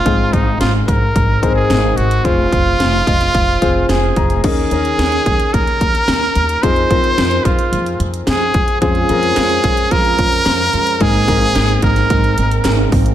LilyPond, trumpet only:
\new Staff \with { instrumentName = "Trumpet" } { \time 4/4 \key ees \dorian \tempo 4 = 110 f'8 ees'8 f'8 bes'4~ bes'16 aes'8. ges'8 | f'2. aes'4 | aes'2 bes'2 | c''4. f'4 r8 aes'4 |
aes'2 bes'2 | aes'4. bes'2 r8 | }